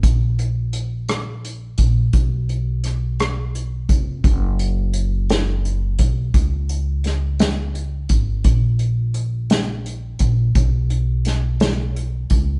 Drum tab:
HH |xxxxxx|xxxxxx|xxxxxx|xxxxxx|
SD |---r--|--rr--|---o--|--oo--|
BD |o----o|o----o|o----o|o----o|

HH |xxxxxx|xxxxxx|
SD |---o--|--oo--|
BD |o----o|o----o|